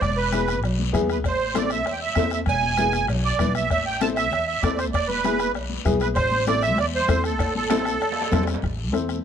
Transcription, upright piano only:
0.32 0.54 B3 medium
0.32 0.54 E4 medium
0.32 0.54 G#4 medium
0.93 1.15 B3 medium
0.93 1.15 E4 medium
0.93 1.15 G#4 loud
1.54 1.76 C4 medium
1.54 1.77 E4 medium
1.54 1.77 A4 medium
2.16 2.38 C4 medium
2.16 2.38 E4 medium
2.16 2.39 A4 medium
2.78 3.00 B3 medium
2.78 3.00 E4 medium
2.78 3.00 G#4 medium
3.38 3.61 B3 medium
3.38 3.61 E4 medium
3.38 3.61 B4 medium
4.01 4.23 C4 medium
4.01 4.23 E4 medium
4.01 4.23 A4 medium
4.63 4.85 C4 medium
4.63 4.85 E4 medium
4.63 4.85 A4 medium
5.25 5.46 B3 medium
5.25 5.46 E4 medium
5.25 5.47 G#4 medium
5.85 6.07 B3 medium
5.85 6.07 E4 medium
5.85 6.07 G#4 loud
6.47 6.69 C4 medium
6.47 6.69 E4 medium
6.47 6.69 A4 medium
7.08 7.30 C4 medium
7.08 7.30 E4 medium
7.08 7.31 A4 medium
7.70 7.92 C4 medium
7.70 7.92 E4 medium
7.70 7.92 A4 medium
8.31 8.53 C4 medium
8.31 8.54 E4 medium
8.31 8.54 A4 loud
8.92 9.15 C4 medium
8.92 9.15 E4 medium
8.92 9.15 A4 medium

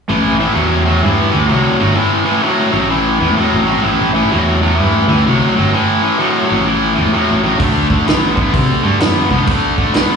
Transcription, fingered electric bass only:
0.10 0.24 A1 medium
0.24 0.46 A1 medium
0.56 1.00 E2 medium
1.03 1.17 G2 medium
1.33 1.49 D2 medium
1.50 1.64 C2 medium
1.81 1.96 G1 medium
2.73 3.18 A1 medium
3.21 3.29 E2 medium
3.30 3.38 A2 medium
3.54 3.76 A1 medium
3.85 3.99 A1 medium
4.01 4.22 A1 medium
4.33 4.77 E2 medium
4.79 4.93 G2 medium
5.08 5.24 D2 medium
5.27 5.41 C2 medium
5.58 5.73 G1 medium
6.52 6.95 A1 medium
6.98 7.05 E2 medium
7.06 7.13 A2 medium
7.31 7.52 A1 medium
7.61 7.74 D2 medium
7.75 7.97 D2 medium
8.09 8.53 A1 medium
8.54 8.68 C3 medium
8.84 8.99 G2 medium
9.00 9.15 F2 medium
9.31 9.47 C2 medium

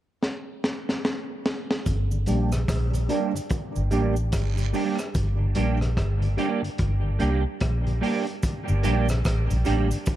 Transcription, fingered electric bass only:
1.87 2.25 G1 loud
2.29 2.66 A#1 medium
2.69 3.06 A#1 medium
3.77 3.91 G1 medium
3.93 4.30 A1 medium
4.33 4.71 G1 loud
5.15 5.53 G1 loud
5.57 5.94 A#1 medium
5.98 6.35 G1 medium
6.80 7.17 G1 medium
7.22 7.44 C2 medium
7.62 7.99 A#1 medium
8.70 8.84 G1 medium
8.86 9.23 A#1 medium
9.26 9.49 A1 loud
9.52 9.66 A#1 medium
9.68 9.90 A1 medium

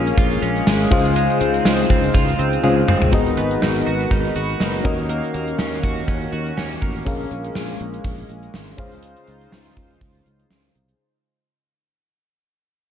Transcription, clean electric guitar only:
0.00 0.66 G#3 medium
0.00 0.42 C#4 medium
0.18 2.14 F4 medium
0.42 1.40 C#4 medium
0.67 0.91 G#3 medium
0.92 1.16 G#3 medium
1.16 1.65 G#3 medium
1.41 1.89 C4 medium
1.65 2.63 G#3 medium
1.90 2.38 C4 medium
2.14 3.18 F4 medium
2.39 2.87 C4 medium
2.64 3.18 G#3 medium
2.88 3.18 C4 medium
3.12 5.62 D#3 medium
3.37 4.85 B3 medium
3.62 4.11 D#4 medium
3.87 4.35 F#4 medium
4.11 4.60 D#4 medium
4.36 5.83 F#4 medium
4.60 5.58 D#4 medium
4.85 5.09 A#3 medium
5.09 5.34 A#3 medium
5.34 6.80 A#3 medium
5.59 6.08 C#4 medium
5.83 6.31 F#4 medium
6.08 6.57 C#4 medium
6.32 7.12 F#4 medium
6.57 7.62 C#4 medium
6.82 7.12 A#3 medium

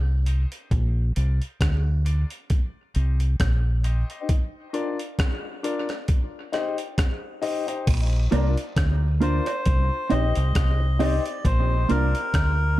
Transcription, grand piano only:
0.26 0.49 D#4 medium
0.26 0.49 G4 medium
0.26 0.49 C5 medium
0.26 0.50 D#5 loud
0.51 0.69 D#4 medium
0.51 0.69 G4 medium
0.51 0.69 C5 medium
0.51 0.69 D#5 medium
1.15 1.38 D4 medium
1.15 1.39 F4 medium
1.15 1.39 A#4 medium
1.15 1.39 D5 medium
2.05 2.28 D4 medium
2.05 2.28 F4 medium
2.05 2.28 A#4 medium
2.05 2.29 D5 loud
2.94 3.17 D#4 medium
2.94 3.18 G4 medium
2.94 3.18 C5 medium
2.94 3.18 D#5 medium
3.84 4.07 D#4 medium
3.84 4.07 G4 medium
3.84 4.07 C5 medium
3.84 4.07 D#5 loud
4.09 4.27 D#4 medium
4.09 4.27 G4 medium
4.09 4.27 C5 medium
4.09 4.27 D#5 medium
4.73 4.96 D4 medium
4.73 4.97 F4 medium
4.73 4.97 A#4 medium
4.73 4.97 D5 medium
5.63 5.86 D4 medium
5.63 5.86 F4 medium
5.63 5.87 A#4 medium
5.63 5.87 D5 medium
6.52 6.75 D#4 medium
6.52 6.76 G4 medium
6.52 6.76 C5 medium
6.52 6.76 D#5 medium
7.42 7.65 D#4 medium
7.42 7.65 G4 medium
7.42 7.65 C5 medium
7.42 7.65 D#5 loud
7.67 7.85 D#4 medium
7.67 7.85 G4 medium
7.67 7.85 C5 medium
7.67 7.85 D#5 medium
8.31 8.54 D4 medium
8.31 8.54 F4 medium
8.31 8.54 A#4 medium
8.31 8.55 D5 medium
9.21 9.44 D4 medium
9.21 9.44 F4 medium
9.21 9.44 A#4 medium
9.21 9.44 D5 medium
10.10 10.33 D#4 loud
10.10 10.33 G4 medium
10.10 10.34 C5 medium
10.10 10.34 D#5 medium
10.99 11.22 D#4 loud
10.99 11.23 G4 medium
10.99 11.23 C5 medium
10.99 11.23 D#5 loud
11.26 11.33 C5 soft
11.26 11.33 D#5 soft
11.89 12.12 D4 medium
11.89 12.12 F4 medium
11.89 12.12 A#4 medium
11.89 12.13 D5 loud

